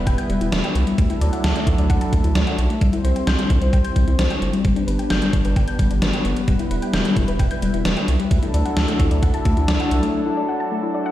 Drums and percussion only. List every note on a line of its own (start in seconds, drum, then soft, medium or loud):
0.07 kick medium
0.07 closed hi-hat medium
0.18 closed hi-hat medium
0.30 closed hi-hat medium
0.41 closed hi-hat medium
0.52 snare loud
0.52 closed hi-hat medium
0.64 closed hi-hat soft
0.75 closed hi-hat medium
0.87 closed hi-hat medium
0.98 kick loud
0.98 closed hi-hat medium
1.10 closed hi-hat medium
1.21 closed hi-hat medium
1.33 closed hi-hat soft
1.44 snare loud
1.44 closed hi-hat medium
1.56 closed hi-hat medium
1.67 kick medium
1.67 closed hi-hat medium
1.78 closed hi-hat soft
1.90 kick medium
1.90 closed hi-hat medium
2.01 closed hi-hat medium
2.13 kick medium
2.13 closed hi-hat medium
2.24 closed hi-hat medium
2.35 snare loud
2.35 closed hi-hat medium
2.47 closed hi-hat soft
2.59 closed hi-hat medium
2.70 closed hi-hat medium
2.81 kick loud
2.81 closed hi-hat medium
2.93 closed hi-hat soft
3.05 closed hi-hat medium
3.16 closed hi-hat medium
3.27 snare loud
3.27 closed hi-hat medium
3.39 closed hi-hat medium
3.50 kick medium
3.50 closed hi-hat medium
3.62 closed hi-hat medium
3.73 kick medium
3.73 closed hi-hat medium
3.85 closed hi-hat medium
3.96 kick medium
3.96 closed hi-hat medium
4.08 closed hi-hat medium
4.19 snare loud
4.19 closed hi-hat medium
4.30 closed hi-hat soft
4.42 closed hi-hat medium
4.53 closed hi-hat medium
4.65 kick loud
4.65 closed hi-hat medium
4.76 closed hi-hat medium
4.88 closed hi-hat medium
4.99 closed hi-hat medium
5.10 snare loud
5.10 closed hi-hat medium
5.22 closed hi-hat medium
5.33 kick medium
5.33 closed hi-hat medium
5.45 closed hi-hat soft
5.56 kick medium
5.56 closed hi-hat medium
5.68 closed hi-hat medium
5.79 kick medium
5.79 closed hi-hat medium
5.91 closed hi-hat medium
6.02 snare loud
6.02 closed hi-hat medium
6.13 closed hi-hat soft
6.25 closed hi-hat medium
6.37 closed hi-hat soft
6.48 kick loud
6.48 closed hi-hat medium
6.59 closed hi-hat soft
6.71 closed hi-hat medium
6.82 closed hi-hat soft
6.93 snare loud
6.93 closed hi-hat medium
7.05 closed hi-hat medium
7.16 kick medium
7.16 closed hi-hat medium
7.28 closed hi-hat medium
7.39 kick medium
7.39 closed hi-hat medium
7.51 closed hi-hat medium
7.62 closed hi-hat medium
7.74 closed hi-hat medium
7.85 snare loud
7.85 closed hi-hat medium
7.97 closed hi-hat soft
8.08 closed hi-hat medium
8.20 closed hi-hat medium
8.31 kick loud
8.31 closed hi-hat medium
8.43 closed hi-hat medium
8.54 closed hi-hat medium
8.66 closed hi-hat soft
8.77 snare loud
8.77 closed hi-hat medium
8.88 closed hi-hat medium
9.00 kick medium
9.00 closed hi-hat medium
9.11 closed hi-hat soft
9.23 kick medium
9.23 closed hi-hat medium
9.34 closed hi-hat medium
9.45 kick medium
9.45 closed hi-hat medium
9.57 closed hi-hat soft
9.68 snare loud
9.68 closed hi-hat medium
9.80 closed hi-hat soft
9.91 closed hi-hat medium
10.03 closed hi-hat medium